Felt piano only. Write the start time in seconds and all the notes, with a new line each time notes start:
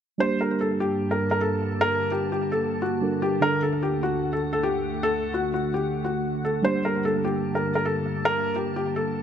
0.20 C5
0.41 A#4
0.61 A4
0.80 G4
1.11 A#4
1.31 A#4
1.41 A4
1.81 A#4
2.12 G4
2.32 G4
2.52 A4
2.82 F#4
3.22 G4
3.42 A#4
3.62 A4
3.83 G4
4.03 F#4
4.33 A4
4.53 A4
4.63 G4
5.03 A4
5.34 F#4
5.54 F#4
5.74 G4
6.05 F#4
6.45 A4
6.64 C5
6.85 A#4
7.05 A4
7.25 G4
7.55 A#4
7.75 A#4
7.85 A4
8.25 A#4
8.56 G4
8.76 G4
8.96 A4